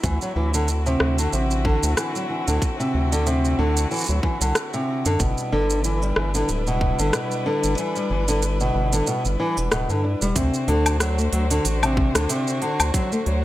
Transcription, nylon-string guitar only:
0.04 0.20 E3 medium
0.22 0.35 F#3 medium
0.36 0.52 E3 medium
0.54 0.68 D3 medium
0.86 1.17 C3 medium
1.19 1.31 D3 medium
1.33 1.64 C3 medium
1.65 1.96 D3 medium
1.97 2.14 E3 medium
2.16 2.28 F#3 medium
2.30 2.46 E3 medium
2.48 2.61 D3 loud
2.80 3.10 C3 medium
3.12 3.25 D3 loud
3.27 3.57 C3 medium
3.59 3.89 D3 loud
3.91 4.07 E3 medium
4.09 4.22 F#3 medium
4.23 4.40 E3 medium
4.41 4.55 D3 loud
4.74 5.04 C3 medium
5.06 5.19 D3 loud
5.20 5.51 B2 medium
5.52 5.83 D3 loud
5.85 6.01 E3 medium
6.03 6.15 G3 medium
6.17 6.33 E3 medium
6.35 6.48 D3 loud
6.67 6.98 B2 medium
6.99 7.12 D3 medium
7.14 7.44 B2 medium
7.46 7.77 D3 loud
7.78 7.94 E3 medium
7.96 8.09 G3 medium
8.10 8.27 E3 medium
8.28 8.42 D3 loud
8.61 8.91 B2 loud
8.93 9.06 D3 medium
9.07 9.23 B2 medium
9.40 9.56 E3 medium
9.72 9.88 B2 medium
9.90 10.03 D3 medium
10.04 10.20 D4 medium
10.22 10.35 G3 medium
10.36 10.67 C3 medium
10.68 10.99 D3 loud
11.01 11.17 F#3 medium
11.18 11.31 A3 medium
11.33 11.49 F#3 medium
11.51 11.64 D3 loud
11.83 12.13 C3 medium
12.15 12.28 D3 medium
12.29 12.60 C3 medium
12.62 12.93 D3 loud
12.94 13.10 F#3 medium
13.12 13.25 A3 medium
13.26 13.42 F#3 medium

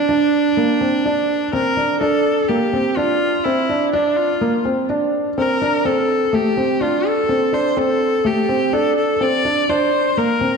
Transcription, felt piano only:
0.09 0.47 D4 medium
0.57 0.76 A#3 medium
0.81 1.00 C4 medium
1.05 1.43 D4 medium
1.53 1.72 C4 medium
1.77 1.96 D4 medium
2.01 2.39 D4 loud
2.49 2.68 A#3 medium
2.73 2.92 C4 medium
2.97 3.35 D4 medium
3.45 3.64 C4 medium
3.69 3.88 D4 medium
3.93 4.31 D4 loud
4.41 4.60 A#3 medium
4.65 4.84 C4 medium
4.89 5.27 D4 medium
5.38 5.57 C4 medium
5.62 5.80 D4 medium
5.85 6.23 C4 medium
6.33 6.52 A3 medium
6.57 6.76 C4 medium
6.81 7.19 D4 medium
7.29 7.48 C4 medium
7.53 7.72 D4 medium
7.77 8.15 C4 medium
8.25 8.44 A3 medium
8.49 8.68 C4 medium
8.73 9.11 D4 medium
9.21 9.40 C4 medium
9.45 9.64 D4 medium
9.69 10.07 D4 loud
10.17 10.36 A#3 medium
10.41 10.57 C4 medium

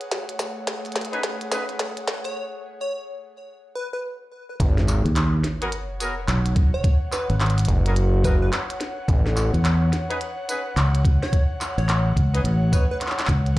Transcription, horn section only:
1.13 1.20 C#4 medium
1.13 1.20 D#4 medium
1.13 1.20 G#4 medium
1.13 1.20 B4 loud
1.51 1.63 C#4 medium
1.51 1.63 D#4 medium
1.51 1.63 G#4 medium
1.51 1.62 B4 medium
5.61 5.68 B3 medium
5.61 5.68 F#4 medium
5.61 5.68 G#4 medium
5.61 5.68 A#4 loud
6.00 6.11 B3 medium
6.00 6.11 F#4 medium
6.00 6.11 G#4 medium
6.00 6.11 A#4 medium
7.86 7.93 B3 medium
7.86 7.93 F#4 medium
7.86 7.93 G#4 medium
7.86 7.93 A#4 loud
8.25 8.36 B3 medium
8.25 8.36 F#4 medium
8.25 8.36 G#4 medium
8.25 8.36 A#4 medium
10.10 10.17 C#4 medium
10.10 10.17 D#4 medium
10.10 10.17 G#4 medium
10.10 10.17 B4 loud
10.48 10.60 C#4 medium
10.48 10.60 D#4 medium
10.48 10.60 G#4 medium
10.48 10.60 B4 loud
12.34 12.41 C#4 medium
12.34 12.41 D#4 medium
12.34 12.41 G#4 medium
12.34 12.41 B4 loud
12.72 12.84 C#4 medium
12.72 12.84 D#4 medium
12.72 12.84 G#4 medium
12.72 12.84 C#5 medium

